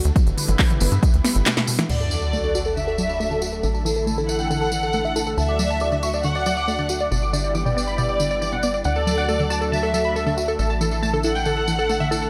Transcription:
Already playing: D3 F#3 A3 F#4 A4
0.04 D2, closed hi-hat, tambourine
0.16 B2 G3 B3 E4 B4, kick, closed hi-hat, tambourine
0.26 G1, closed hi-hat, tambourine
0.37 D3, open hi-hat, tambourine
0.48 G1, closed hi-hat, mid tom, tambourine
0.59 E3, kick, clap, open hi-hat, tambourine
0.70 B2, closed hi-hat, mid tom, tambourine
0.80 G1 B3, open hi-hat, mid tom, tambourine
0.92 G2, closed hi-hat
1.03 B2, kick, closed hi-hat, tambourine
1.13 D2, closed hi-hat, tambourine
1.24 B3, snare, open hi-hat, tambourine
1.35 G1, closed hi-hat, tambourine
1.46 B2, snare, clap, closed hi-hat, tambourine
1.57 B2, snare, tambourine
1.67 B2, open hi-hat, tambourine
1.79 E3, snare, closed hi-hat
1.89 D2 D3 F#3 A3 F#4 A4 D5 F#5, tambourine, crash, sub drop
2.00 A4, tambourine
2.11 F#3 A4, tambourine
2.22 F#5, tambourine
2.33 A3 A4, tambourine
2.44 D3 A4, tambourine
2.55 F#4 A5, tambourine
2.65 A4, tambourine
2.76 D3 E5 A5, tambourine
2.87 A4, tambourine
2.98 F#3 A4, tambourine
3.09 B5, tambourine
3.20 A3 A4, tambourine
3.31 D3 A4, tambourine
3.42 F#4, tambourine
3.52 A4, tambourine
3.63 A1 D3 E3 E4 A4, tambourine
3.74 A5, tambourine
3.85 E3 A4, tambourine
3.96 A4, tambourine
4.07 A3 A5, tambourine
4.18 D3 A4, tambourine
4.29 E4 A4 F#5, tambourine
4.39 G5, tambourine
4.50 D3 A4, tambourine
4.61 A4, tambourine
4.72 E3, tambourine
4.83 A4, tambourine
4.93 A3 A4, tambourine
5.05 D3 E5, tambourine
5.16 E4 A4, tambourine
5.27 A4, tambourine
5.37 D2 D3 F#3 F#4 E5 A5, tambourine
5.48 D5, tambourine
5.59 F#3 D5, tambourine
5.70 A5, tambourine
5.80 A3 D5, tambourine
5.92 D3 D5, tambourine
6.03 F#4 C#6, tambourine
6.13 D5, tambourine
6.23 D3 F#5 C#6, tambourine
6.35 D5, tambourine
6.46 F#3 D5, tambourine
6.57 D6, tambourine
6.68 A3 D5, tambourine
6.78 D3 D5, tambourine
6.89 F#4, tambourine
7.00 D5, tambourine
7.11 G1 B2 G3 B3 E4 G4 D5, tambourine
7.22 D6, tambourine
7.33 D3 D5, tambourine
7.44 D5, tambourine
7.55 E3 D6, tambourine
7.66 B2 D5, tambourine
7.77 B3 D5, tambourine
7.87 B5, tambourine
7.98 B2 D5, tambourine
8.09 D5
8.20 D3, tambourine
8.31 D5, tambourine
8.42 E3 D5, tambourine
8.52 B2 F#5, tambourine
8.63 B3 D5, tambourine
8.74 D5, tambourine
8.84 D2 D3 F#3 A3 F#4 A4 D5 F#5, tambourine
8.96 A4, tambourine
9.07 F#3 A4, tambourine
9.18 F#5, tambourine
9.29 A3 A4, tambourine
9.39 D3 A4, tambourine
9.50 F#4 A5, tambourine
9.61 A4, tambourine
9.72 D3 E5 A5, tambourine
9.83 A4, tambourine
9.94 F#3 A4, tambourine
10.05 B5
10.16 A3 A4, tambourine
10.26 D3 A4, tambourine
10.37 F#4, tambourine
10.48 A4, tambourine
10.59 A1 D3 E3 A3 E4 A4, tambourine
10.70 A5, tambourine
10.81 E3 A4, tambourine
10.91 A4, tambourine
11.03 A3 A5, tambourine
11.13 D3 A4, tambourine
11.23 E4 A4 F#5, tambourine
11.35 G5, tambourine
11.45 D3 A4, tambourine
11.56 A4, tambourine
11.68 E3, tambourine
11.79 A4, tambourine
11.89 A3 A4, tambourine
12.00 D3 E5, tambourine
12.11 E4 A4, tambourine
12.22 A4, tambourine

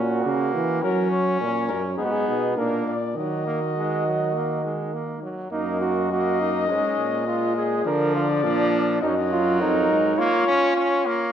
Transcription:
Already playing: A#2 C#4 F#4
0.25 C#3 A#3
0.55 E3
0.82 F#3 C#4 F#4 A#4
1.11 C#5
1.40 A#2 C#4 C#5
1.69 F#2 A#4
1.97 G#2 B3 D#4 G#4
2.05 F#4
2.12 G#4
2.28 B2
2.56 A#2 A#3 D4 A#4
2.87 A#2 D5
3.15 D#3 F#3 F#4 D#5
3.47 A#3
3.78 G#3
4.06 F#3
4.35 A#3
4.65 G#3
4.94 A#3
5.22 F#3
5.52 F#2 A#3 D#4 D#5
5.80 F#4
6.11 A#3 F#4
6.41 D#4
6.68 G#2 G#3 C#4
6.99 A#2
7.27 G#3 F4
7.56 G#4
7.85 D3 F3 A#4 D5
8.15 F4
8.44 A#2 F3 D4
9.01 F#2 F#3 D#4 D#5
9.08 C#5
9.15 D#5
9.32 F4
9.59 F2 D#4 A#4
9.90 G#2
10.16 A#3 F4 C#5
10.48 C#4
10.75 C#4 C#5
11.06 A#3

